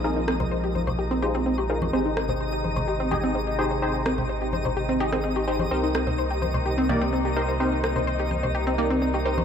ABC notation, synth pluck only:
X:1
M:4/4
L:1/16
Q:1/4=127
K:Cm
V:1 name="Synth pluck"
C E C c c G c c G C G C C G c c | C E C c c G c c G C G C C G c c | C E C c c G c c G C G C C G c c | C E C c c G c c G C B, C C G c c |
C E C c c G c c G C B, C C G c c |]